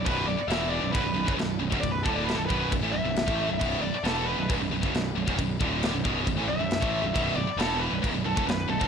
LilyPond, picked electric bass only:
\new Staff \with { instrumentName = "Picked electric bass" } { \clef bass \time 4/4 \key b \minor \tempo 4 = 135 b,,,8 b,,,16 r16 e,,8. b,,,16 cis,,16 b,,,16 b,,,16 fis,,16 b,,,8 b,,,16 b,,,16 | b,,,8 d,,8. b,,,16 b,,,8 b,,,16 a,,16 b,,,16 b,,,8 a,,8 b,,,16 | b,,,8 b,,,16 r16 e,,8. b,,,16 cis,,16 b,,,16 b,,,16 fis,,16 b,,,8 b,,,16 b,,,16 | b,,,8 d,,8. b,,,16 b,,,8 b,,,16 a,,16 b,,,16 b,,,8 a,,8 b,,,16 |
b,,,8 b,,,16 r16 e,,8. b,,,16 cis,,16 b,,,16 b,,,16 fis,,16 b,,,8 b,,,16 b,,,16 | }